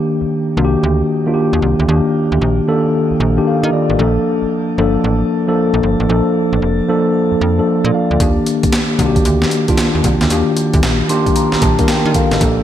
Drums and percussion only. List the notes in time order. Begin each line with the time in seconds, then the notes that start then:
8.20 kick, closed hi-hat
8.46 closed hi-hat
8.63 kick, closed hi-hat
8.72 snare, closed hi-hat
8.99 kick, closed hi-hat
9.16 kick, closed hi-hat
9.25 closed hi-hat
9.42 snare
9.51 closed hi-hat
9.68 kick, closed hi-hat
9.78 snare, closed hi-hat
10.04 kick, closed hi-hat
10.21 snare, closed hi-hat
10.30 closed hi-hat
10.57 closed hi-hat
10.73 kick, closed hi-hat
10.83 snare, closed hi-hat
11.09 closed hi-hat
11.26 kick, closed hi-hat
11.36 closed hi-hat
11.52 snare
11.62 kick, closed hi-hat
11.79 kick, closed hi-hat
11.88 snare, closed hi-hat
12.14 kick, closed hi-hat
12.31 snare, closed hi-hat
12.41 kick, closed hi-hat